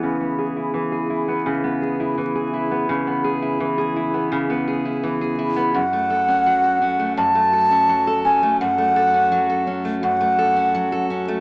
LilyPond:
<<
  \new Staff \with { instrumentName = "Flute" } { \time 4/4 \key cis \minor \tempo 4 = 84 r1 | r1 | fis''2 a''4. gis''8 | fis''4. r8 fis''4. r8 | }
  \new Staff \with { instrumentName = "Steel-string acoustic guitar" } { \time 4/4 \key cis \minor <cis e b e' gis'>16 b16 gis'16 e'16 e16 gis'16 e'16 b16 cis16 b16 gis'16 e'16 e16 gis'16 e'16 b16 | cis16 b16 gis'16 e'16 e16 gis'16 e'16 b16 cis16 b16 gis'16 e'16 e16 gis'16 e'16 b16 | fis,16 a16 a'16 cis'16 fis16 a'16 cis'16 a16 fis,16 a16 a'16 cis'16 fis16 a'16 cis'16 a16 | fis,16 a16 a'16 cis'16 fis16 a'16 cis'16 a16 fis,16 a16 a'16 cis'16 fis16 a'16 cis'16 a16 | }
>>